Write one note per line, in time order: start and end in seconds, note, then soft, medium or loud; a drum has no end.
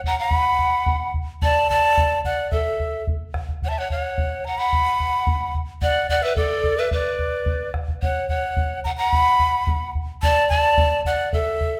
0.04 0.18 F#5 medium
0.04 0.19 A#5 medium
0.04 bombo low medium
0.19 1.11 F#5 medium
0.19 0.34 A#5 loud
0.31 1.11 B5 loud
0.31 bombo low medium
0.59 bombo low soft
0.86 bombo low medium
1.14 bombo low medium
1.42 1.68 D5 medium
1.42 1.68 A5 loud
1.42 bombo low medium
1.70 2.21 D5 medium
1.70 2.20 A5 loud
1.70 bombo low medium
1.97 bombo low medium
2.25 2.50 D5 medium
2.25 2.50 F#5 medium
2.25 bombo low medium
2.51 3.03 A4 medium
2.51 3.02 E5 medium
2.51 bombo low medium
2.80 bombo low soft
3.07 bombo low medium
3.34 bombo rim soft
3.34 bombo low medium
3.49 bombo low soft
3.62 3.71 C#5 medium
3.62 3.70 F#5 medium
3.62 bombo low medium
3.68 3.81 E5 medium
3.68 3.80 A5 medium
3.78 3.91 C#5 medium
3.78 3.90 F#5 medium
3.90 4.48 C#5 medium
3.90 4.46 F#5 medium
3.90 bombo low soft
4.18 bombo low medium
4.45 4.59 F#5 medium
4.45 4.60 A#5 medium
4.58 5.54 F#5 medium
4.58 5.54 B5 loud
4.73 bombo low medium
5.00 bombo low medium
5.27 bombo low medium
5.54 bombo low medium
5.82 6.07 D5 loud
5.82 6.07 F#5 loud
5.82 bombo low medium
6.09 6.25 D5 medium
6.09 6.24 F#5 loud
6.09 bombo low medium
6.23 6.36 B4 medium
6.23 6.36 E5 medium
6.36 6.79 A4 medium
6.36 6.81 D5 medium
6.36 bombo low medium
6.64 bombo low medium
6.78 6.91 B4 medium
6.78 6.92 E5 medium
6.91 7.70 B4 medium
6.91 7.71 D5 medium
6.91 bombo low medium
7.19 bombo low medium
7.46 bombo low medium
7.74 bombo rim soft
7.74 bombo low medium
7.88 bombo low medium
8.02 8.27 C#5 medium
8.02 8.27 F#5 medium
8.02 bombo low medium
8.29 8.81 C#5 medium
8.29 8.80 F#5 medium
8.29 bombo low soft
8.57 bombo low medium
8.84 8.92 F#5 medium
8.84 8.90 A#5 loud
8.84 bombo low medium
8.97 9.91 F#5 medium
8.97 9.10 A#5 loud
9.10 9.90 B5 loud
9.10 bombo low medium
9.39 bombo low soft
9.67 bombo low medium
9.95 bombo low medium
10.22 10.48 D5 loud
10.22 10.48 A5 loud
10.22 bombo low medium
10.49 11.02 D5 medium
10.49 11.00 A5 loud
10.49 bombo low medium
10.78 bombo low medium
11.05 11.31 D5 medium
11.05 11.31 F#5 medium
11.05 bombo low medium
11.33 11.80 A4 medium
11.33 11.80 E5 medium
11.33 bombo low medium
11.61 bombo low soft